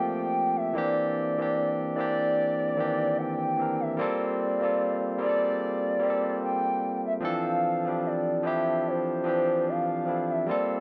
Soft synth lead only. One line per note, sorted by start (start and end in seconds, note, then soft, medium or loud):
0.00 0.58 G5 loud
0.56 0.76 E5 loud
0.75 1.96 D5 loud
1.96 3.19 D5 loud
3.18 3.82 G5 loud
3.81 3.99 E5 loud
3.99 5.16 D5 loud
5.22 6.39 D5 loud
6.43 7.01 G5 loud
7.06 7.14 E5 medium
7.24 8.08 F5 loud
8.06 8.47 D5 loud
8.45 8.89 E5 medium
8.88 9.70 C5 medium
9.69 10.32 F5 loud
10.31 10.48 E5 medium
10.50 10.80 D5 loud